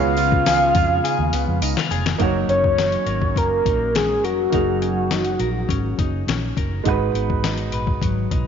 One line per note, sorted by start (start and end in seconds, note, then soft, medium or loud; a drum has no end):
0.00 0.71 C#2 loud
0.00 2.17 C#3 medium
0.00 2.20 C#3 medium
0.00 2.17 G#3 medium
0.00 1.32 B3 medium
0.00 2.16 B3 medium
0.00 2.17 B3 medium
0.00 2.16 C#4 medium
0.00 2.17 D#4 medium
0.00 0.17 F4 medium
0.00 2.17 F4 medium
0.00 0.46 G#4 medium
0.00 2.17 G#4 medium
0.00 2.18 C#5 medium
0.00 1.64 F5 loud
0.17 0.74 F4 medium
0.17 closed hi-hat medium
0.17 tambourine medium
0.32 kick medium
0.46 1.03 G#4 medium
0.46 snare loud
0.46 closed hi-hat loud
0.46 tambourine medium
0.75 0.98 F2 loud
0.75 1.62 F4 medium
0.75 kick medium
0.75 closed hi-hat medium
0.75 tambourine soft
1.04 1.90 G#4 medium
1.04 closed hi-hat loud
1.04 tambourine soft
1.19 1.30 D#2 medium
1.32 1.45 C#2 medium
1.32 2.27 B3 medium
1.32 closed hi-hat medium
1.32 tambourine soft
1.48 1.59 F2 medium
1.61 1.73 C#2 medium
1.61 1.77 D#4 medium
1.61 closed hi-hat medium
1.61 tambourine medium
1.77 2.20 F4 medium
1.77 snare medium
1.90 2.14 F1 medium
1.90 2.26 G#4 medium
1.90 closed hi-hat medium
1.90 tambourine soft
2.06 snare loud
2.18 2.43 F#1 medium
2.18 4.53 F#3 medium
2.18 4.48 A#3 medium
2.18 4.49 D#4 medium
2.18 4.50 F#4 medium
2.18 3.05 A#4 medium
2.18 kick medium
2.18 closed hi-hat medium
2.23 4.51 C#5 medium
2.48 2.95 F#1 loud
2.48 3.35 C#4 medium
2.48 3.39 C#5 loud
2.48 closed hi-hat medium
2.64 kick medium
2.78 3.66 D#4 medium
2.78 snare loud
2.78 closed hi-hat medium
2.92 closed hi-hat medium
3.06 3.36 G#1 medium
3.06 4.23 A#4 medium
3.06 closed hi-hat medium
3.22 kick medium
3.36 3.59 F#1 medium
3.36 3.94 C#4 medium
3.36 3.97 A#4 loud
3.36 kick medium
3.36 closed hi-hat medium
3.66 4.23 A#1 medium
3.66 5.11 D#4 soft
3.66 kick medium
3.66 closed hi-hat medium
3.95 4.81 C#4 medium
3.95 4.26 G#4 medium
3.95 snare loud
3.95 closed hi-hat medium
4.23 4.47 F1 medium
4.23 5.99 F#4 medium
4.23 4.53 A#4 medium
4.23 closed hi-hat medium
4.50 5.36 F#1 medium
4.50 6.90 F#3 medium
4.50 6.80 A#3 medium
4.50 6.81 D#4 medium
4.50 6.82 F#4 medium
4.50 kick medium
4.50 closed hi-hat medium
4.54 6.83 G#4 medium
4.54 5.39 A#4 medium
4.82 5.67 C#4 medium
4.82 closed hi-hat medium
5.11 5.99 D#4 medium
5.11 snare loud
5.11 closed hi-hat medium
5.25 closed hi-hat medium
5.40 5.63 A#1 medium
5.40 6.56 A#4 medium
5.40 closed hi-hat medium
5.69 5.92 G#1 loud
5.69 6.27 C#4 medium
5.69 kick medium
5.69 closed hi-hat medium
5.99 6.22 F#1 medium
5.99 7.15 D#4 medium
5.99 kick medium
5.99 closed hi-hat medium
6.27 6.51 A#1 medium
6.27 6.92 C#4 medium
6.27 snare medium
6.27 closed hi-hat medium
6.57 6.80 F#1 medium
6.57 6.92 A#4 medium
6.57 kick medium
6.57 closed hi-hat medium
6.84 7.09 G#1 medium
6.84 8.47 G#2 medium
6.84 8.47 G#3 medium
6.84 8.47 D#4 medium
6.84 8.47 F#4 medium
6.84 kick medium
6.84 closed hi-hat medium
6.88 7.72 B4 medium
6.88 8.47 B4 medium
7.14 7.72 G#1 medium
7.14 8.47 B3 medium
7.14 closed hi-hat medium
7.30 kick medium
7.44 8.32 D#4 medium
7.44 snare loud
7.44 closed hi-hat medium
7.58 closed hi-hat soft
7.72 7.96 A#1 medium
7.72 8.47 B4 medium
7.72 closed hi-hat medium
7.87 kick medium
8.01 8.25 G#1 medium
8.01 8.47 F#3 medium
8.01 kick medium
8.01 closed hi-hat medium
8.31 8.47 B1 medium
8.31 8.47 D#4 medium
8.31 kick medium
8.31 closed hi-hat medium